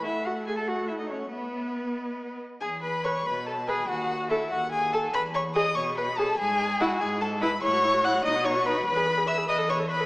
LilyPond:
<<
  \new Staff \with { instrumentName = "Violin" } { \time 6/8 \key e \major \tempo 4. = 96 fis''4. fis''4. | e''4. dis''4 r8 | gis''8 b''8 cis'''8 b''8 a''8 gis''8 | fis''4 e''8 fis''8 gis''8 a''8 |
b''8 cis'''8 dis'''8 cis'''8 b''8 a''8 | gis''4 fis''8 gis''8 a''8 b''8 | cis'''4 fis'''8 dis'''8 cis'''8 b''8 | b''4 e'''8 dis'''8 cis'''8 b''8 | }
  \new Staff \with { instrumentName = "Violin" } { \time 6/8 \key e \major e''8 fis''8 gis''16 a''16 fis''8 e''16 dis''16 cis''8 | b'2~ b'8 r8 | gis'8 b'8 cis''8 b'8 a'8 gis'8 | fis'4 e'8 fis'8 gis'8 a'8 |
b'8 cis''8 dis''8 cis''8 b'8 a'8 | gis'4 fis'8 gis'8 a'8 b'8 | cis''4 fis''8 dis''8 cis''8 b'8 | b'4 e''8 dis''8 cis''8 b'8 | }
  \new Staff \with { instrumentName = "Viola" } { \time 6/8 \key e \major a2. | b2~ b8 r8 | r4 b'16 r4 r16 b'16 r16 | r4 a'16 r4 r16 a'16 r16 |
r4 gis'16 r4 r16 gis'16 r16 | r4 e'16 r4 r16 e'16 r16 | e'16 fis'16 e'16 fis'16 e'16 fis'16 dis'16 fis'16 dis'16 fis'16 dis'16 fis'16 | b'16 gis'16 b'16 gis'16 b'16 gis'16 b'16 a'16 b'16 a'16 b'16 a'16 | }
  \new Staff \with { instrumentName = "Cello" } { \clef bass \time 6/8 \key e \major e'8 fis'8 gis'16 a'16 fis'8 e'16 dis'16 cis'8 | b2~ b8 r8 | e,4. b,4. | dis,4. dis,4. |
e,4. b,4. | gis,4. gis,4. | a,4. b,4. | e,4. e,4. | }
>>